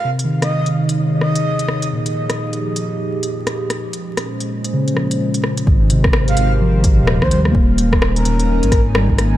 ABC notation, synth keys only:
X:1
M:4/4
L:1/16
Q:"Swing 16ths" 1/4=128
K:Ab
V:1 name="Synth keys" clef=bass
C, E,8 z6 z | B,,8 z8 | z8 D, F,6- F,- | F, z C,6 F,6 G, B,- |
B,3 z8 z G,2 B,2 |]